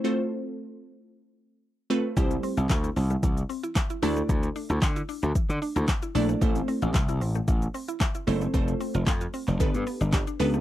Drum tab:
HH |----------------|xxoxxxoxxxoxxxox|xxoxxxoxxxoxxxox|xxoxxxoxxxoxxxox|
SH |----------------|xxxxxxxxxxxxxxxx|xxxxxxxxxxxxxxxx|xxxxxxxxxxxxxxxx|
CP |----------------|----x-------x---|----x-------x---|----x-------x---|
SD |----------------|----o-------o---|----o-------o---|----o-------o---|
BD |----------------|o---o---o---o---|o---o---o---o---|o---o---o---o---|

HH |xxoxxxo-xxoxxxox|
SH |xxxxxxxxxxxxxxxx|
CP |----x--x----x---|
SD |----o-------o---|
BD |o---o---o---o---|